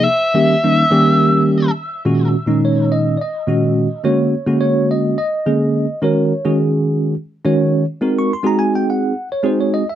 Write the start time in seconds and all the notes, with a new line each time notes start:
0.03 E5
0.34 D#3 G3 A#3 C#4 G4
0.63 D#3 G3 A#3 C#4 D#4
0.91 D#3 G3 A#3 C#4 G4
2.05 A#2 D#3 G#3 C#4 F#4
2.46 A#2 D#3 G#3 C#4 D#4
2.65 C#5
2.92 D#5
3.17 D5
3.21 D#5
3.47 A#2 D#3 G#3 C#4 F#4
4.04 D3 G#3 A#3 C#4 F#4 C#5
4.46 D3 G#3 A#3 C#4 F#4
4.61 C#5
4.91 D#5
5.18 D#5
5.46 D3 G#3 A#3 C#4 G#4
6.02 D#3 G#3 C#4 F#4 A#4 C#5
6.45 D#3 G#3 C#4 F#4 G#4
7.44 D#3 G#3 C#4 F#4 C#5
8.01 G#3 C4 D#4 F#4 A#4
8.19 C#6
8.33 C6
8.43 G#3 C4 D#4 F#4 G#4 A#5
8.59 G#5
8.75 G5
8.90 F#5
9.32 C#5
9.43 G#3 C4 D#4 F#4 G#4 C5
9.61 C#5
9.74 D#5
9.90 E5